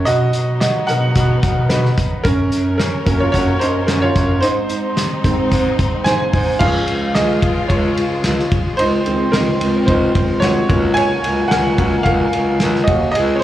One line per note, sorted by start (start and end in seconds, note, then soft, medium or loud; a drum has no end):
0.00 4.38 F#3 medium
0.05 0.29 B2 loud
0.05 2.23 B3 medium
0.05 2.23 D#4 medium
0.05 0.58 F#4 medium
0.05 0.59 D#5 loud
0.05 closed hi-hat medium
0.33 0.69 B2 medium
0.33 closed hi-hat medium
0.60 0.87 F#4 medium
0.60 0.86 D#5 medium
0.60 snare loud
0.60 closed hi-hat medium
0.87 1.11 B2 medium
0.87 1.66 F#3 soft
0.87 1.66 B3 soft
0.87 1.66 D#4 medium
0.87 1.67 A#4 medium
0.87 1.72 F#5 medium
0.87 closed hi-hat medium
1.15 1.38 B2 loud
1.15 kick medium
1.15 closed hi-hat medium
1.43 1.65 B2 medium
1.43 kick medium
1.43 closed hi-hat medium
1.69 1.92 B2 loud
1.69 2.21 D#4 medium
1.69 2.26 B4 medium
1.69 snare loud
1.69 closed hi-hat medium
1.85 snare soft
1.98 kick medium
1.98 closed hi-hat medium
2.24 2.47 F#2 loud
2.24 4.41 C#4 medium
2.24 2.76 C#4 medium
2.24 2.75 A#4 medium
2.24 4.41 A#4 medium
2.24 kick loud
2.24 closed hi-hat medium
2.52 2.87 F#2 loud
2.52 closed hi-hat medium
2.78 3.05 C#4 medium
2.78 3.22 A#4 medium
2.78 snare loud
2.78 closed hi-hat medium
3.05 3.29 F#2 medium
3.05 3.43 F#3 soft
3.05 3.44 A#3 soft
3.05 3.44 C#4 medium
3.05 kick loud
3.05 closed hi-hat medium
3.20 3.33 F4 medium
3.20 3.30 C#5 medium
3.32 3.56 F#2 loud
3.32 3.59 F#4 medium
3.32 3.61 C#5 medium
3.32 kick medium
3.32 closed hi-hat medium
3.59 3.84 F#2 medium
3.59 3.87 D#4 medium
3.59 3.85 C5 medium
3.59 closed hi-hat medium
3.87 4.11 F#2 loud
3.87 3.94 C#4 medium
3.87 3.92 A#4 medium
3.87 snare loud
3.87 closed hi-hat medium
4.02 4.40 F4 medium
4.02 4.39 C#5 loud
4.16 4.38 F#2 loud
4.16 kick medium
4.16 closed hi-hat medium
4.41 4.65 G#2 loud
4.41 6.59 G#3 medium
4.41 6.58 C4 medium
4.41 6.29 D#4 medium
4.41 6.58 D#4 medium
4.41 6.05 C5 medium
4.41 closed hi-hat medium
4.69 5.05 G#2 medium
4.69 closed hi-hat medium
4.97 snare loud
4.97 closed hi-hat medium
5.23 5.47 G#2 loud
5.23 5.61 D#3 medium
5.23 5.62 G#3 soft
5.23 5.62 C4 medium
5.23 kick loud
5.23 closed hi-hat medium
5.51 5.74 G#2 loud
5.51 kick medium
5.51 closed hi-hat medium
5.79 6.01 G#2 medium
5.79 kick medium
5.79 closed hi-hat medium
6.04 6.28 G#2 loud
6.04 6.57 C5 medium
6.04 6.61 G#5 loud
6.04 snare loud
6.04 closed hi-hat medium
6.33 6.56 G#2 loud
6.33 kick loud
6.33 open hi-hat medium
6.59 6.83 C#2 loud
6.59 13.44 C#3 medium
6.59 8.74 F3 medium
6.59 8.75 G#3 medium
6.59 10.65 G#3 medium
6.59 8.75 C#4 medium
6.59 8.76 F4 medium
6.59 7.12 G#4 medium
6.59 7.16 F5 loud
6.59 kick loud
6.59 crash medium
6.88 7.10 C#2 medium
6.88 ride medium
7.15 7.38 C#2 loud
7.15 7.67 G#4 medium
7.15 7.66 D#5 medium
7.15 snare loud
7.15 ride medium
7.42 7.65 C#2 medium
7.42 kick loud
7.42 ride medium
7.68 7.92 C#2 loud
7.68 8.48 F4 medium
7.68 8.47 C#5 medium
7.68 kick medium
7.68 ride medium
7.97 8.19 C#2 medium
7.97 ride medium
8.24 8.47 C#2 loud
8.24 snare loud
8.24 ride medium
8.40 snare soft
8.52 kick loud
8.52 ride medium
8.77 9.01 C#2 loud
8.77 10.68 C4 medium
8.77 9.30 D#4 medium
8.77 9.34 C5 loud
8.77 ride medium
9.06 9.29 C#2 medium
9.06 9.44 D#3 medium
9.06 9.44 G#3 soft
9.06 9.44 C4 medium
9.06 ride soft
9.32 9.56 C#2 medium
9.32 9.85 D#4 medium
9.32 9.83 A#4 medium
9.32 snare loud
9.32 ride medium
9.61 9.83 C#2 medium
9.61 ride medium
9.86 10.10 C#2 loud
9.86 10.39 D#4 medium
9.86 10.38 C5 medium
9.86 kick medium
9.86 ride medium
10.15 10.38 C#2 medium
10.15 kick loud
10.15 ride medium
10.40 10.64 C#2 loud
10.40 10.67 D#3 soft
10.40 10.67 G#3 soft
10.40 10.67 C4 soft
10.40 10.93 F#4 medium
10.40 10.96 C#5 medium
10.40 snare loud
10.40 ride medium
10.69 11.14 C#2 loud
10.69 11.47 F#3 medium
10.69 13.12 F#3 medium
10.69 11.47 A#3 medium
10.69 13.13 A#3 medium
10.69 11.47 C#4 medium
10.69 kick loud
10.69 ride medium
10.94 11.48 C#5 medium
10.94 11.52 G#5 loud
10.94 ride medium
11.24 11.46 C#2 loud
11.24 ride medium
11.48 11.74 C#2 loud
11.48 12.02 A#4 medium
11.48 12.06 F#5 medium
11.48 snare loud
11.48 ride medium
11.78 12.01 C#2 loud
11.78 12.03 F#3 soft
11.78 12.03 A#3 soft
11.78 12.03 C#4 soft
11.78 kick medium
11.78 ride medium
12.03 12.28 C#2 loud
12.03 12.84 A#4 medium
12.03 12.89 F5 loud
12.03 kick medium
12.03 ride medium
12.33 12.56 C#2 medium
12.33 ride medium
12.60 12.83 C#2 loud
12.60 snare loud
12.60 ride medium
12.75 snare soft
12.84 13.10 D#2 loud
12.84 13.10 D#5 medium
12.84 kick loud
12.84 ride medium
12.88 13.13 F#4 medium
13.12 13.37 C#2 loud
13.12 13.44 G#3 medium
13.12 13.44 C4 medium
13.12 13.35 D#5 loud
13.12 ride medium
13.16 13.35 G#4 medium
13.35 13.42 C#5 medium
13.39 13.44 C5 loud